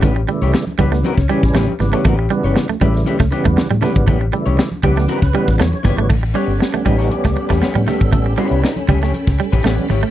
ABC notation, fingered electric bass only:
X:1
M:4/4
L:1/16
Q:1/4=118
K:Amix
V:1 name="Fingered electric bass" clef=bass
A,,,2 z =C,, z2 ^C,,2 z C,, z A,,, A,,, z ^G,,, z | A,,,2 z G,,, z2 A,,,2 z C,, z E,, z A,, z ^G,,, | A,,,2 z =C,, z2 ^C,,2 z C,, z A,,, E,, z G,,, ^G,,, | A,,,2 z G,,, z2 A,,,2 z C,, z E,, z A,, z ^G,,, |
A,,,2 z =C,, z2 ^C,,2 z C,, z A,,, A,,, z ^G,,, z |]